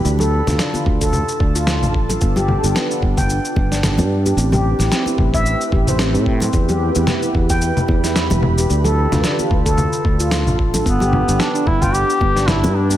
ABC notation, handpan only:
X:1
M:4/4
L:1/16
Q:"Swing 16ths" 1/4=111
K:Ddor
V:1 name="Handpan"
D A2 F D F z A z2 D F z3 A | B, G2 D B, D z g z2 B, D z3 G | C G2 E C E z e z2 G c C C z c | B, G2 E B, E z g z2 B, E z3 G |
D A2 F D F z A z2 D F z3 A | B, G2 D B, D z g z2 B, D z3 G |]